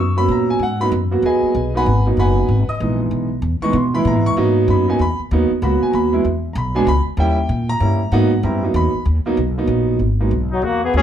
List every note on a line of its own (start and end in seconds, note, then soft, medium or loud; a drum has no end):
0.00 0.27 F#2 medium
0.00 0.17 C#6 medium
0.17 0.58 F#3 medium
0.17 0.58 A#3 medium
0.17 0.58 B3 medium
0.17 0.58 C#4 medium
0.17 0.29 B5 loud
0.28 0.59 A#2 medium
0.28 0.49 A#5 medium
0.50 0.61 G#5 medium
0.59 0.90 G#2 medium
0.59 0.81 F#5 loud
0.80 0.91 F#3 medium
0.80 0.91 A#3 medium
0.80 0.91 B3 medium
0.80 0.91 D#4 medium
0.80 0.88 B5 loud
0.92 1.22 F#2 loud
1.11 1.52 F#3 medium
1.11 1.52 A#3 medium
1.11 1.52 B3 medium
1.11 1.53 F#4 medium
1.22 1.41 D#2 medium
1.22 1.72 G#4 medium
1.22 1.72 B4 medium
1.22 1.72 D#5 medium
1.22 1.72 G#5 medium
1.43 muted upright bass stroke soft
1.55 1.85 B1 medium
1.74 1.85 F#3 medium
1.74 1.85 A#3 medium
1.74 1.85 B3 medium
1.74 1.85 D#4 medium
1.74 2.05 B4 medium
1.74 2.05 F#5 medium
1.74 2.05 G#5 medium
1.74 2.05 B5 loud
1.86 2.16 G#1 medium
2.06 2.46 F#3 medium
2.06 2.47 A#3 medium
2.06 2.47 B3 medium
2.06 2.47 D#4 medium
2.17 2.48 F#1 medium
2.17 2.66 B4 medium
2.17 2.66 F#5 medium
2.17 2.66 G#5 medium
2.17 2.66 B5 medium
2.49 2.67 G#1 medium
2.68 2.98 D#5 medium
2.68 2.98 D#6 medium
2.68 muted upright bass stroke soft
2.80 3.10 A#1 medium
2.80 3.27 E3 medium
2.80 3.27 G#3 medium
2.80 3.28 B3 medium
2.80 3.28 D#4 medium
3.11 3.41 B1 medium
3.42 3.60 E2 medium
3.61 3.73 E3 medium
3.61 3.73 G#3 medium
3.61 3.73 B3 medium
3.61 3.74 D#4 medium
3.61 3.74 C#6 loud
3.61 muted upright bass stroke soft
3.73 4.04 B2 loud
3.73 3.94 C6 medium
3.94 4.35 E3 medium
3.94 4.35 G#3 medium
3.94 4.35 B3 medium
3.94 4.35 E4 medium
3.94 4.06 B5 loud
4.05 4.15 A#2 loud
4.05 4.25 A#5 medium
4.15 4.26 G#2 medium
4.26 4.36 E2 medium
4.26 4.33 C#6 loud
4.37 4.67 G#2 medium
4.37 4.84 F#3 medium
4.37 4.84 A#3 medium
4.37 4.84 B3 medium
4.37 4.84 D#4 loud
4.68 4.98 F#2 loud
4.68 4.88 B5 medium
4.88 4.98 F#3 medium
4.88 4.99 A#3 medium
4.88 4.99 B3 medium
4.88 4.99 D#4 medium
4.88 5.00 G#5 medium
4.99 5.18 E2 medium
4.99 5.19 B5 loud
5.19 muted upright bass stroke soft
5.31 5.49 D#2 loud
5.31 5.49 F#3 medium
5.31 5.49 A#3 medium
5.31 5.49 B3 medium
5.31 5.50 D#4 medium
5.51 muted upright bass stroke soft
5.62 5.80 C#2 loud
5.62 6.09 F#3 medium
5.62 6.09 A#3 medium
5.62 6.10 B3 medium
5.62 6.10 F#4 medium
5.62 5.82 B5 medium
5.82 5.94 G#5 medium
5.82 muted upright bass stroke soft
5.90 6.24 D#2 medium
5.90 5.93 A#5 medium
5.95 6.13 B5 medium
6.12 6.23 F#3 medium
6.12 6.24 G#3 medium
6.12 6.24 B3 medium
6.12 6.24 E4 medium
6.24 6.55 E2 medium
6.53 6.86 B1 loud
6.53 6.56 A#5 medium
6.58 6.76 B5 medium
6.75 6.86 F#3 medium
6.75 6.86 G#3 medium
6.75 6.86 B3 medium
6.75 6.87 D4 medium
6.75 6.87 G#5 medium
6.87 7.05 C#2 loud
6.87 7.00 B5 loud
7.17 7.48 D#2 loud
7.17 7.36 G3 medium
7.17 7.36 A#3 medium
7.17 7.36 C#4 medium
7.17 7.36 E4 medium
7.17 7.67 G5 loud
7.49 7.80 A#2 loud
7.69 8.09 A#5 loud
7.80 8.11 G2 loud
7.80 7.98 G3 medium
7.80 7.98 A#3 medium
7.80 7.99 C#4 medium
7.80 7.99 E4 medium
8.12 8.42 G#2 loud
8.12 8.30 F#3 medium
8.12 8.30 A#3 medium
8.12 8.30 B3 medium
8.12 8.30 D#4 loud
8.12 8.41 F#5 medium
8.43 8.74 F#2 loud
8.43 8.61 G3 medium
8.43 8.61 B3 medium
8.43 8.61 C4 medium
8.43 8.61 E4 medium
8.43 8.73 A#5 medium
8.62 8.90 F#3 medium
8.62 8.91 A#3 medium
8.62 8.91 B3 medium
8.62 8.91 D#4 medium
8.74 8.93 E2 loud
8.74 9.05 B5 medium
8.94 muted upright bass stroke soft
9.05 9.24 D#2 medium
9.25 9.36 F#3 medium
9.25 9.36 A#3 medium
9.25 9.37 B3 medium
9.25 9.37 D#4 medium
9.25 muted upright bass stroke soft
9.37 9.67 B1 medium
9.57 9.98 F#3 medium
9.57 9.98 A#3 medium
9.57 9.98 B3 medium
9.57 9.99 D#4 medium
9.67 9.98 A#1 medium
9.99 10.30 G#1 medium
10.20 10.31 F#3 medium
10.20 10.30 G#3 medium
10.20 10.31 A#3 medium
10.20 10.31 B3 medium
10.20 10.31 D#4 medium
10.31 10.61 B1 medium
10.51 10.67 F#3 medium
10.51 10.65 D#4 medium
10.62 10.93 E2 medium
10.62 10.84 A#3 medium
10.62 10.83 F#4 medium
10.84 10.95 B3 medium
10.84 10.94 G#4 medium
10.94 11.02 D#2 medium
10.94 11.02 F#3 medium
10.94 11.02 G#3 medium
10.94 11.02 A#3 medium
10.94 11.02 B3 medium
10.94 11.02 C#4 loud
10.94 11.02 D#4 medium
10.94 11.02 G#4 medium